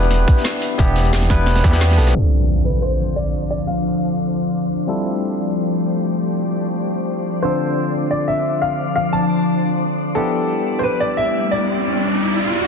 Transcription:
Already playing: detuned saw bass E1, tine electric piano B3 D4 E4 G4 B4, ambient pad D4 G4 E5
0.03 closed hi-hat
0.11 snare, closed hi-hat
0.28 kick, closed hi-hat
0.37 snare
0.44 snare, closed hi-hat
0.62 closed hi-hat
0.78 detuned saw bass E1, tine electric piano B3 D4 E4 G4, kick, closed hi-hat
0.96 snare, closed hi-hat
1.05 closed hi-hat
1.13 snare, closed hi-hat
1.22 snare, closed hi-hat
1.30 tine electric piano B3 D4 E4 B4, kick, snare, closed hi-hat
1.46 snare, closed hi-hat
1.55 snare, closed hi-hat
1.64 detuned saw bass E2, tine electric piano B3 D4 E4 G4, kick, snare, closed hi-hat
1.72 tine electric piano B3 D4 E4 G4, snare, closed hi-hat
1.81 snare, closed hi-hat
1.90 snare, closed hi-hat
1.97 detuned saw bass B1, grand piano A4, snare, closed hi-hat
2.07 snare, closed hi-hat
2.14 tine electric piano D3 C4 D4 F4 A4, ambient pad F3 D4 C5 F5, impact
2.65 grand piano B4
2.82 grand piano C5
3.16 grand piano D5
3.50 grand piano D5
3.67 grand piano F5
4.87 tine electric piano G3 C4 D4 E4 F4 A4, ambient pad A3 G4 D5
7.42 tine electric piano D3 C4 D4 F4 A4, ambient pad F3 D4, grand piano C5
8.11 grand piano D5
8.28 grand piano E5
8.62 grand piano F5
8.96 grand piano F5
9.13 grand piano A5
10.15 ambient pad G3 E4 D5, tine electric piano B3 D4 E4 G4, grand piano A4
10.33 riser
10.79 grand piano C5
10.83 grand piano B4
11.00 grand piano D5
11.17 grand piano E5
11.51 grand piano D5

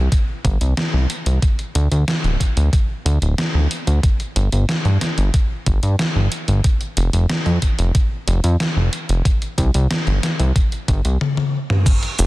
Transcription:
0.12 kick, closed hi-hat
0.45 analog synth bass G1, kick, closed hi-hat
0.61 analog synth bass C2, closed hi-hat
0.77 snare, closed hi-hat
0.93 analog synth bass C2
1.10 closed hi-hat
1.26 analog synth bass C2, closed hi-hat
1.42 kick, closed hi-hat
1.59 closed hi-hat
1.75 analog synth bass D2, closed hi-hat
1.91 analog synth bass D2, closed hi-hat
2.08 snare, closed hi-hat
2.24 analog synth bass D1, closed hi-hat
2.40 kick, closed hi-hat
2.57 analog synth bass D2, closed hi-hat
2.73 kick, closed hi-hat
3.05 analog synth bass D2, closed hi-hat
3.22 analog synth bass D1, closed hi-hat
3.38 snare, closed hi-hat
3.54 analog synth bass D2
3.71 closed hi-hat
3.87 analog synth bass D2, closed hi-hat
4.03 kick, closed hi-hat
4.20 closed hi-hat
4.36 analog synth bass G1, closed hi-hat
4.52 analog synth bass G1, closed hi-hat
4.69 snare, closed hi-hat
4.85 analog synth bass G2, closed hi-hat
5.01 snare, closed hi-hat
5.18 analog synth bass G1, closed hi-hat
5.34 kick, closed hi-hat
5.66 analog synth bass G1, kick, closed hi-hat
5.83 analog synth bass G2, closed hi-hat
5.99 snare, closed hi-hat
6.16 analog synth bass G1
6.32 closed hi-hat
6.48 analog synth bass G1, closed hi-hat
6.64 kick, closed hi-hat
6.81 closed hi-hat
6.97 analog synth bass F1, closed hi-hat
7.13 analog synth bass F1, closed hi-hat
7.30 snare, closed hi-hat
7.46 analog synth bass F2, closed hi-hat
7.62 kick, closed hi-hat
7.79 analog synth bass F1, closed hi-hat
7.95 kick, closed hi-hat
8.27 analog synth bass F1, closed hi-hat
8.44 analog synth bass F2, closed hi-hat
8.60 snare, closed hi-hat
8.76 analog synth bass F1
8.93 closed hi-hat
9.09 analog synth bass F1, closed hi-hat
9.25 kick, closed hi-hat
9.42 closed hi-hat
9.58 analog synth bass C2, kick, closed hi-hat
9.74 analog synth bass C2, closed hi-hat
9.91 snare, closed hi-hat
10.07 analog synth bass G1, closed hi-hat
10.23 snare, closed hi-hat
10.39 analog synth bass C2, closed hi-hat
10.56 kick, closed hi-hat
10.72 closed hi-hat
10.88 analog synth bass G1, kick, closed hi-hat
11.05 analog synth bass C2, closed hi-hat
11.21 high tom
11.37 high tom
11.70 mid tom
11.86 kick, closed hi-hat, crash, cabasa
12.03 closed hi-hat
12.19 analog synth bass F1, closed hi-hat, cabasa

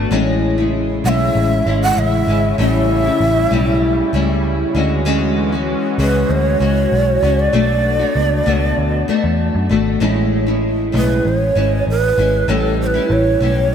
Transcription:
Already playing: nylon-string guitar B2 A3 D4 F#4
0.11 picked electric bass A1, nylon-string guitar A2 G#3 C#4 E4, analog synth pad C#3 G#3 C#4 E4
0.58 nylon-string guitar G#3 C#4 E4
1.04 picked electric bass B1, nylon-string guitar A2 G#3 C#4 E4, shakuhachi F#5
1.09 shakuhachi E5
1.35 picked electric bass A1
1.66 picked electric bass G#1, nylon-string guitar G#3 C#4 E4
1.83 shakuhachi F#5
1.97 picked electric bass A1, shakuhachi E5
2.27 picked electric bass G#1, nylon-string guitar G#3 C#4 E4
2.58 picked electric bass A1, nylon-string guitar A2 G3 C#4 E4, analog synth pad G3, shakuhachi E5
3.04 nylon-string guitar G3 C#4 E4
3.20 picked electric bass A1
3.51 picked electric bass B1, nylon-string guitar A2 G3 C#4 E4
4.13 picked electric bass C#2, nylon-string guitar A2 G3 C#4 E4
4.75 picked electric bass D2, nylon-string guitar D3 G#3 C#4 F#4, analog synth pad E3 G#3 C#4 F#4
5.05 nylon-string guitar D3 G#3 C#4 F#4
5.52 nylon-string guitar G#3 C#4 F#4
5.98 picked electric bass C#2, nylon-string guitar G#3 C#4 F#4, shakuhachi B4
6.29 picked electric bass D2, shakuhachi C#5
6.60 picked electric bass C#2, nylon-string guitar G#3 C#4 F#4
6.92 picked electric bass B1
7.23 picked electric bass C#2, nylon-string guitar G#3 C#4 F#4
7.39 shakuhachi D5
7.53 picked electric bass B1, nylon-string guitar B2 A3 D4 F#4, analog synth pad A3 B3 D4
7.99 nylon-string guitar A3 D4 F#4
8.15 picked electric bass C#2
8.46 picked electric bass C#2, nylon-string guitar B2 A3 D4 F#4
8.78 picked electric bass D2
9.08 nylon-string guitar B2 A3 D4 F#4, muted picked electric bass stroke
9.24 picked electric bass E2
9.55 picked electric bass F#2
9.69 picked electric bass G#1, nylon-string guitar B2 A3 D4 F#4
10.00 picked electric bass A1, nylon-string guitar A2 G#3 C#4 E4
10.47 nylon-string guitar G#3 C#4 E4
10.92 picked electric bass B1, nylon-string guitar A2 G#3 C#4 E4
10.98 shakuhachi B4
11.25 picked electric bass A1, shakuhachi C5
11.39 shakuhachi C#5
11.55 picked electric bass G#1, nylon-string guitar G#3 C#4 E4
11.87 picked electric bass A1, shakuhachi B4
12.17 picked electric bass G#1, nylon-string guitar G#3 C#4 E4
12.48 picked electric bass A1, nylon-string guitar A2 G3 C#4 E4, shakuhachi A4
12.82 shakuhachi C#5
12.86 shakuhachi B4
12.94 nylon-string guitar G3 C#4 E4
13.10 picked electric bass A1, shakuhachi C#5
13.40 picked electric bass B1, nylon-string guitar A2 G3 C#4 E4

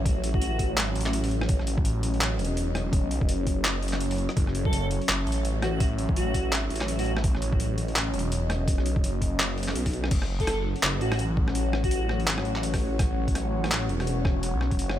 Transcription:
Already playing: detuned saw bass A1, analog synth pad F#3 C#4 C#5 E5
0.06 kick, closed hi-hat
0.24 closed hi-hat
0.34 digital synth lead F#4, kick
0.42 closed hi-hat
0.59 kick, closed hi-hat
0.77 detuned saw bass G#1, clap, closed hi-hat
0.95 detuned saw bass A1, closed hi-hat
1.01 closed hi-hat
1.06 cross-stick, clap
1.13 closed hi-hat
1.24 open hi-hat
1.31 closed hi-hat
1.41 cross-stick
1.49 analog synth pad D#5, kick, closed hi-hat
1.59 cross-stick
1.67 closed hi-hat
1.78 kick
1.85 closed hi-hat
2.03 closed hi-hat
2.14 open hi-hat
2.21 clap, closed hi-hat
2.39 detuned saw bass E1, closed hi-hat
2.45 closed hi-hat
2.57 closed hi-hat
2.75 cross-stick, closed hi-hat
2.93 kick, closed hi-hat
3.04 detuned saw bass B1
3.11 closed hi-hat
3.21 detuned saw bass E1, kick
3.29 detuned saw bass F#1, closed hi-hat
3.47 kick, closed hi-hat
3.65 clap, closed hi-hat
3.83 closed hi-hat
3.88 closed hi-hat
3.93 cross-stick, clap
4.01 closed hi-hat
4.11 open hi-hat
4.18 closed hi-hat
4.29 cross-stick
4.37 detuned saw bass F#1, analog synth pad E5, kick, closed hi-hat
4.47 cross-stick
4.55 closed hi-hat
4.65 digital synth lead A4, kick
4.73 closed hi-hat
4.91 closed hi-hat
5.02 open hi-hat
5.09 detuned saw bass F#1, clap, closed hi-hat
5.27 detuned saw bass A1, closed hi-hat
5.32 closed hi-hat
5.45 closed hi-hat
5.62 digital synth lead F#4, cross-stick, closed hi-hat
5.80 kick, closed hi-hat
5.98 closed hi-hat
6.09 kick
6.16 digital synth lead F#4, closed hi-hat
6.34 kick, closed hi-hat
6.52 detuned saw bass G#1, clap, closed hi-hat
6.70 detuned saw bass A1, closed hi-hat
6.76 closed hi-hat
6.81 cross-stick, clap
6.88 closed hi-hat
6.99 digital synth lead F#4, open hi-hat
7.06 digital synth lead F#4, closed hi-hat
7.17 cross-stick
7.23 analog synth pad D#5, kick, closed hi-hat
7.35 cross-stick
7.42 closed hi-hat
7.53 kick
7.60 closed hi-hat
7.78 closed hi-hat
7.88 open hi-hat
7.96 clap, closed hi-hat
8.14 detuned saw bass E1, closed hi-hat
8.19 closed hi-hat
8.32 closed hi-hat
8.50 cross-stick, closed hi-hat
8.68 kick, closed hi-hat
8.78 detuned saw bass B1, cross-stick
8.86 closed hi-hat
8.96 detuned saw bass E1, kick
9.04 detuned saw bass F#1, closed hi-hat
9.22 kick, closed hi-hat
9.40 clap, closed hi-hat
9.58 open hi-hat
9.63 closed hi-hat
9.68 cross-stick, clap
9.75 detuned saw bass B1, closed hi-hat
9.86 kick, open hi-hat
9.93 closed hi-hat
10.04 cross-stick
10.11 detuned saw bass F#1, analog synth pad F#3 C#4 C#5 F#5, kick, closed hi-hat, crash
10.22 cross-stick
10.40 digital synth lead A4, kick, closed hi-hat
10.47 cross-stick, closed hi-hat
10.76 open hi-hat
10.83 detuned saw bass F#1, cross-stick, clap, closed hi-hat
11.01 detuned saw bass A1, digital synth lead F#4, closed hi-hat
11.12 cross-stick, open hi-hat
11.19 closed hi-hat
11.37 kick
11.48 cross-stick
11.55 closed hi-hat
11.73 cross-stick
11.84 digital synth lead F#4, kick, closed hi-hat
11.91 closed hi-hat
12.09 cross-stick
12.20 open hi-hat
12.27 detuned saw bass G#1, clap, closed hi-hat
12.38 cross-stick
12.45 detuned saw bass A1, closed hi-hat
12.56 clap
12.63 closed hi-hat
12.74 kick, cross-stick, open hi-hat
12.99 kick, cross-stick, closed hi-hat
13.28 kick, closed hi-hat
13.35 cross-stick, closed hi-hat
13.64 cross-stick, open hi-hat
13.71 clap, closed hi-hat
13.89 detuned saw bass E1, closed hi-hat
14.00 cross-stick, open hi-hat
14.07 closed hi-hat
14.25 kick, cross-stick
14.43 closed hi-hat
14.54 detuned saw bass B1
14.61 cross-stick
14.71 detuned saw bass E1, kick, closed hi-hat
14.79 detuned saw bass F#1, closed hi-hat
14.89 cross-stick

